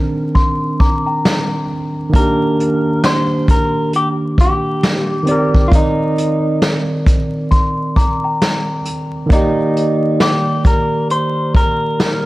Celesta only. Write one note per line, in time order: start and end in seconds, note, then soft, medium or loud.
0.35 0.77 C6 medium
0.80 1.05 A#5 medium
0.80 1.06 D6 medium
1.06 2.10 G5 medium
1.06 2.10 A#5 medium
7.51 7.94 C6 medium
7.96 8.22 A#5 medium
7.96 8.22 D6 medium
8.24 9.27 G5 medium
8.24 9.27 A#5 medium